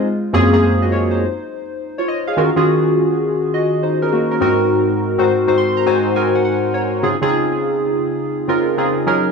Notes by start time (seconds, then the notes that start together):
Already playing: G#3 F4
0.33 F#2 A#3 C4 C#4 F4 G#4
0.52 F#2 A#3 C4 C#4 F4 G#4
0.63 D#4 C5
0.82 F#4 D#5
0.92 F4 C#5
1.11 D#4 C5
1.98 F4 C#5
2.08 D#5
2.27 G#4 F5
2.37 D#3 C#4 F4 F#4 A#4
2.56 D#3 C#4 F4 F#4 G#4
3.54 F#4 D#5
3.83 D#4 C5
4.02 C#4 A#4
4.12 A#3 F#4
4.31 C#4 A#4
4.41 G#2 C4 D#4 F#4 A#4
5.18 G#2 C4 D#4 F#4 C5
5.47 G#2 C4 D#4 F#4 C5
5.58 C6
5.77 A#5
5.86 G#2 C4 D#4 F#4 C5 G#5
6.15 G#2 C4 D#4 F#4 A#4 G#5
6.35 F#5
6.45 F#5
6.74 C#5
7.02 C#3 C4 D#4 F4 G#4
7.21 C#3 C4 D#4 F4 G#4
8.48 C#3 C4 D#4 F4 A#4
8.77 C#3 C4 D#4 F4 G#4
9.06 F#3 C#4 D#4 G#4 A#4